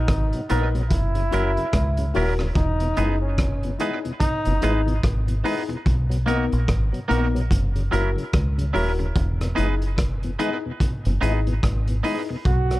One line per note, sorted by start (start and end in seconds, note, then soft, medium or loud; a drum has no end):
0.00 0.45 D#4 medium
0.08 0.32 G#1 medium
0.08 kick loud
0.08 cross-stick loud
0.08 closed hi-hat medium
0.33 0.41 B2 medium
0.33 0.41 F#3 medium
0.33 closed hi-hat soft
0.49 0.89 A#1 medium
0.49 0.67 F#3 medium
0.49 0.61 A#3 medium
0.49 0.68 B3 medium
0.49 0.61 B3 medium
0.49 0.74 D#4 medium
0.49 0.68 D#4 medium
0.49 0.61 D#4 medium
0.49 0.74 A#4 medium
0.49 0.68 A#4 medium
0.49 0.74 B4 medium
0.49 closed hi-hat medium
0.75 0.82 B2 medium
0.75 0.82 F#3 medium
0.75 closed hi-hat soft
0.90 1.29 F#1 medium
0.90 2.10 E4 loud
0.90 kick loud
0.90 closed hi-hat medium
1.15 1.23 F#2 medium
1.15 1.23 C#3 medium
1.15 closed hi-hat soft
1.31 1.56 F#1 medium
1.31 1.43 F#3 medium
1.31 1.50 F#3 medium
1.31 1.43 A#3 medium
1.31 1.51 C#4 medium
1.31 1.56 E4 loud
1.31 1.43 E4 medium
1.31 1.51 E4 medium
1.31 1.56 F#4 medium
1.31 1.56 A#4 medium
1.31 1.51 A#4 medium
1.31 closed hi-hat medium
1.57 1.65 F#2 medium
1.57 1.65 C#3 medium
1.57 closed hi-hat soft
1.73 2.12 C#2 medium
1.73 kick loud
1.73 cross-stick loud
1.73 closed hi-hat loud
1.97 2.06 F#2 medium
1.97 2.06 C#3 medium
1.97 closed hi-hat medium
2.14 2.54 D#1 medium
2.14 2.26 F#3 medium
2.14 2.33 F#3 medium
2.14 2.26 A#3 medium
2.14 2.33 C#4 medium
2.14 2.38 E4 medium
2.14 2.26 E4 medium
2.14 2.33 E4 medium
2.14 2.39 F#4 medium
2.14 2.39 A#4 loud
2.14 2.33 A#4 medium
2.14 open hi-hat medium
2.39 2.47 F#2 medium
2.39 2.47 C#3 medium
2.39 muted clean electric guitar stroke soft
2.39 cross-stick medium
2.55 2.94 E1 loud
2.55 3.17 D#4 loud
2.55 kick loud
2.55 closed hi-hat medium
2.80 2.88 E2 medium
2.80 2.88 B2 medium
2.80 closed hi-hat medium
2.96 3.76 F#1 medium
2.96 3.08 E3 medium
2.96 3.08 G#3 medium
2.96 3.15 B3 medium
2.96 3.21 D#4 medium
2.96 3.15 D#4 medium
2.96 3.09 D#4 medium
2.96 3.21 E4 medium
2.96 3.21 G#4 medium
2.96 3.15 G#4 medium
2.96 3.15 B4 medium
2.96 closed hi-hat medium
3.21 3.76 C#4 medium
3.38 kick loud
3.38 cross-stick loud
3.38 closed hi-hat medium
3.63 3.71 E2 medium
3.63 3.71 B2 medium
3.63 closed hi-hat soft
3.79 3.91 E3 medium
3.79 3.91 G#3 medium
3.79 3.98 B3 medium
3.79 4.03 D#4 medium
3.79 3.98 D#4 medium
3.79 3.91 D#4 medium
3.79 4.03 E4 medium
3.79 4.04 G#4 medium
3.79 3.98 G#4 medium
3.79 3.98 B4 medium
3.79 closed hi-hat medium
4.05 4.12 E2 medium
4.05 4.12 B2 medium
4.05 closed hi-hat soft
4.19 4.99 D#4 loud
4.19 kick loud
4.19 closed hi-hat loud
4.45 4.62 F#1 medium
4.45 4.53 E2 medium
4.45 4.53 B2 medium
4.45 closed hi-hat medium
4.61 5.01 G#1 medium
4.61 4.73 E3 medium
4.61 4.73 G#3 medium
4.61 4.80 B3 medium
4.61 4.86 D#4 loud
4.61 4.73 D#4 medium
4.61 4.80 D#4 medium
4.61 4.86 E4 medium
4.61 4.86 G#4 loud
4.61 4.80 G#4 medium
4.61 4.81 B4 medium
4.61 closed hi-hat medium
4.86 4.94 E2 medium
4.86 4.94 B2 medium
4.86 closed hi-hat soft
5.03 5.42 G#1 loud
5.03 kick loud
5.03 cross-stick loud
5.03 closed hi-hat medium
5.27 5.35 E2 medium
5.27 5.35 B2 medium
5.27 closed hi-hat medium
5.43 5.55 E3 medium
5.43 5.55 G#3 medium
5.43 5.62 B3 medium
5.43 5.55 D#4 medium
5.43 5.69 D#4 medium
5.43 5.62 D#4 medium
5.43 5.69 E4 medium
5.43 5.63 G#4 medium
5.43 5.69 G#4 loud
5.43 5.63 B4 medium
5.43 open hi-hat medium
5.68 5.76 E2 medium
5.68 5.76 B2 medium
5.68 muted clean electric guitar stroke soft
5.68 closed hi-hat soft
5.86 6.48 B1 loud
5.86 kick loud
5.86 closed hi-hat medium
6.10 6.17 B2 medium
6.10 6.17 F#3 medium
6.10 closed hi-hat medium
6.25 6.37 A#3 medium
6.25 6.44 A#3 medium
6.25 6.37 B3 medium
6.25 6.51 B3 medium
6.25 6.37 D#4 medium
6.25 6.51 D#4 medium
6.25 6.45 D#4 medium
6.25 6.45 F#4 medium
6.25 6.51 A#4 loud
6.25 6.45 A#4 medium
6.25 closed hi-hat medium
6.52 6.68 A#1 medium
6.52 closed hi-hat soft
6.68 6.92 G#1 medium
6.68 kick loud
6.68 cross-stick loud
6.68 closed hi-hat medium
6.93 7.00 B2 medium
6.93 7.00 F#3 medium
6.93 closed hi-hat soft
7.08 7.48 A#1 medium
7.08 7.26 A#3 loud
7.08 7.20 A#3 medium
7.08 7.20 B3 medium
7.08 7.33 B3 medium
7.08 7.20 D#4 medium
7.08 7.27 D#4 medium
7.08 7.33 D#4 medium
7.08 7.27 F#4 loud
7.08 7.27 A#4 loud
7.08 7.34 A#4 medium
7.08 closed hi-hat medium
7.35 7.42 B2 medium
7.35 7.42 F#3 medium
7.35 closed hi-hat soft
7.51 7.89 F#1 loud
7.51 kick loud
7.51 closed hi-hat loud
7.75 7.83 F#2 medium
7.75 7.83 C#3 medium
7.75 closed hi-hat soft
7.91 8.16 F#1 medium
7.91 8.09 F#3 medium
7.91 8.03 F#3 medium
7.91 8.03 A#3 medium
7.91 8.09 C#4 medium
7.91 8.16 E4 loud
7.91 8.03 E4 medium
7.91 8.10 E4 medium
7.91 8.16 F#4 medium
7.91 8.10 A#4 medium
7.91 8.16 A#4 medium
7.91 closed hi-hat medium
8.16 8.24 F#2 medium
8.16 8.24 C#3 medium
8.16 closed hi-hat soft
8.33 8.72 C#2 medium
8.33 kick loud
8.33 cross-stick loud
8.33 closed hi-hat medium
8.58 8.65 F#2 medium
8.58 8.65 C#3 medium
8.58 closed hi-hat medium
8.73 9.13 D#1 medium
8.73 8.91 F#3 medium
8.73 8.85 F#3 medium
8.73 8.85 A#3 medium
8.73 8.91 C#4 medium
8.73 8.98 E4 loud
8.73 8.92 E4 medium
8.73 8.85 E4 medium
8.73 8.98 F#4 medium
8.73 8.92 A#4 medium
8.73 8.99 A#4 medium
8.73 open hi-hat medium
8.99 9.06 F#2 medium
8.99 9.07 C#3 medium
8.99 muted clean electric guitar stroke soft
8.99 closed hi-hat soft
9.16 9.54 E1 loud
9.16 kick loud
9.16 closed hi-hat medium
9.41 9.48 E2 medium
9.41 9.48 B2 soft
9.41 cross-stick medium
9.41 closed hi-hat medium
9.55 10.36 F#1 medium
9.55 9.68 E3 medium
9.55 9.68 G#3 medium
9.55 9.73 B3 medium
9.55 9.80 D#4 medium
9.55 9.74 D#4 medium
9.55 9.68 D#4 medium
9.55 9.80 E4 medium
9.55 9.74 G#4 loud
9.55 9.81 G#4 loud
9.55 9.74 B4 loud
9.55 closed hi-hat medium
9.82 closed hi-hat soft
9.98 kick loud
9.98 cross-stick loud
9.98 closed hi-hat medium
10.23 10.31 E2 medium
10.23 10.31 B2 medium
10.23 closed hi-hat soft
10.39 10.50 E3 medium
10.39 10.50 G#3 medium
10.39 10.57 B3 medium
10.39 10.63 D#4 medium
10.39 10.57 D#4 medium
10.39 10.51 D#4 medium
10.39 10.63 E4 medium
10.39 10.57 G#4 medium
10.39 10.64 G#4 medium
10.39 10.57 B4 medium
10.39 closed hi-hat medium
10.66 10.72 E2 medium
10.66 10.72 B2 medium
10.80 kick medium
10.80 closed hi-hat medium
11.05 11.21 F#1 medium
11.05 11.13 E2 medium
11.05 11.13 B2 medium
11.05 closed hi-hat medium
11.21 11.60 G#1 medium
11.21 11.33 E3 medium
11.21 11.33 G#3 medium
11.21 11.39 B3 medium
11.21 11.39 D#4 medium
11.21 11.46 D#4 medium
11.21 11.33 D#4 medium
11.21 11.46 E4 medium
11.21 11.39 G#4 medium
11.21 11.46 G#4 loud
11.21 11.39 B4 medium
11.21 closed hi-hat medium
11.47 11.54 E2 medium
11.47 11.54 B2 medium
11.47 closed hi-hat soft
11.63 12.01 G#1 loud
11.63 kick loud
11.63 cross-stick loud
11.63 closed hi-hat medium
11.88 11.95 E2 medium
11.88 11.95 B2 medium
11.88 closed hi-hat medium
12.03 12.16 E3 medium
12.03 12.16 G#3 medium
12.03 12.21 B3 medium
12.03 12.21 D#4 medium
12.03 12.28 D#4 medium
12.03 12.16 D#4 medium
12.03 12.28 E4 medium
12.03 12.22 G#4 medium
12.03 12.29 G#4 loud
12.03 12.22 B4 medium
12.03 open hi-hat medium
12.29 12.37 E2 medium
12.29 12.37 B2 soft
12.29 muted clean electric guitar stroke soft
12.45 12.80 B1 loud
12.45 12.80 F#4 loud
12.45 kick loud
12.45 closed hi-hat medium
12.70 12.77 B2 medium
12.70 12.78 F#3 medium
12.70 cross-stick medium
12.70 closed hi-hat medium